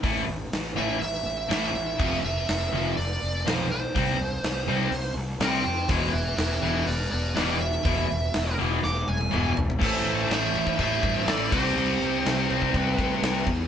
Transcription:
0.03 A1 A2 E3 A3, kick, open hi-hat
0.28 A1
0.53 A1, snare, open hi-hat
0.76 A1 A2 E3 A3 E5
1.01 A1 E5, open hi-hat
1.25 A1
1.49 A1 A2 E3 A3 E5, snare, open hi-hat
1.74 A1
1.98 F1 F2 C3 F3, kick, crash
2.24 F1 E5
2.49 F1, snare, open hi-hat
2.72 F1 F2 C3 F3
2.97 F1 D5, open hi-hat
3.22 F1
3.46 B1 F2 C3 F3 C5, snare, open hi-hat
3.71 C5
3.95 C2 C3 G3 C4, kick, open hi-hat
4.18 C2
4.43 C2, snare, open hi-hat
4.68 C2 C3 G3 C4
4.91 C2, open hi-hat
5.15 C2
5.40 C2 C3 G3 C4 G5 C6, snare, open hi-hat
5.64 F2 G5 C6
5.89 E1 E2 B2 E3 G#5 C6, kick, open hi-hat
6.12 E1 B4 E5
6.37 E1 B4 E5, snare, open hi-hat
6.63 E1 E2 B2 E3 B4 E5
6.87 E1 B4 D5, open hi-hat
7.12 E1 B4 D5
7.36 E1 E2 B2 E3 B4 D5, snare, open hi-hat
7.61 E5
7.85 E1 E2 B2 E3, kick, open hi-hat
8.10 E1
8.34 E1, snare, open hi-hat
8.58 E1 E2 B2 E3
8.83 E1 D6, snare
9.08 E1 G#5, high tom
9.21 high tom
9.31 E1 E2 B2 E3, mid tom
9.56 E1, floor tom
9.70 floor tom
9.79 A1 A2 E3 A3, kick, crash
9.84 A4 C5
10.05 A1, crash
10.30 A1 C5 E5, snare, crash
10.54 A1, crash
10.67 kick
10.77 A1 A2 E3 A3 C5 E5, kick, crash
11.03 G2, kick, crash
11.27 A1 A4 D5, snare, crash
11.51 C2 C3 G3 C4 G4 C5, kick, crash
11.76 C2, crash
12.01 C2, crash
12.26 C2, snare, crash
12.49 C2 C3 G3 C4, crash
12.62 kick
12.74 C2 F#4 B4, kick, crash
12.98 A2, kick, crash
13.23 C2, snare, crash
13.47 E2, kick, crash

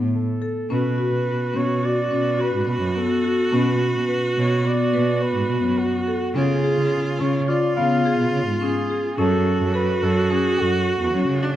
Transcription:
Already playing: B3
0.00 A2
0.15 A4
0.42 A4
0.70 B2 C#4 F#4 B4
0.98 F#4
1.12 B2
1.54 B2 C#4 C#5
1.83 F#4 D5
2.11 B2 C#4
2.39 F#4 B4
2.53 G#2
2.68 B2 B4
2.81 F#2
2.95 B3 A4
3.24 F#4
3.52 B2 C#4 B4
3.95 B2
4.09 B4
4.37 B2 C#5
4.65 B3 D5
4.93 B2 B4
5.22 B4
5.35 G#2
5.50 B2 B3
5.64 F#2
5.79 F#4
6.07 A4
6.34 C#3 C#4 F4 G#4
6.64 G#4
6.76 C#3
7.19 C#3 C#4 C#5
7.47 F4 D5
7.76 C#3 B3 F5
8.05 G#4
8.18 B2
8.32 C#3
8.47 G#2
8.61 C#4 G#4
8.90 G#4
9.17 F#2 C#4 F#4 A4
9.60 F#2
9.74 A4 B4
10.02 F#2 A4
10.30 C#4 G#4
10.58 F#2 F#4 A4
11.00 E2
11.14 F#3 C#4
11.28 C#3
11.43 D4

